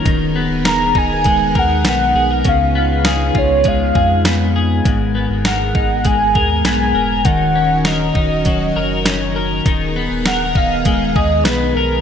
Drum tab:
HH |x-x-x-x-|x-x-x-x-|x-x-x-x-|x-x-x-x-|
SD |--o---o-|--o---o-|--o---o-|--o---o-|
BD |o--ooo--|o--ooo--|o--ooo--|o--oo---|

HH |x-x-x-x-|
SD |--o---o-|
BD |o--ooo--|